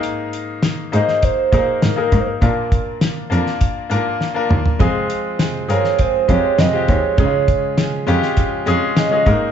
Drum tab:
HH |x-x-x-x-x-x-x-x-|x-x-x-x-x-x-----|x-x-x-x-x-x-x-x-|x-x-x-x-x-x-x-x-|
SD |----o--o----o---|----o--o----o---|----o--o----o---|----o--o----o---|
T2 |----------------|--------------o-|----------------|----------------|
FT |----------------|---------------o|----------------|----------------|
BD |--------o-o---o-|o-o-----o-------|o-------o-o---o-|o-o-----o-----o-|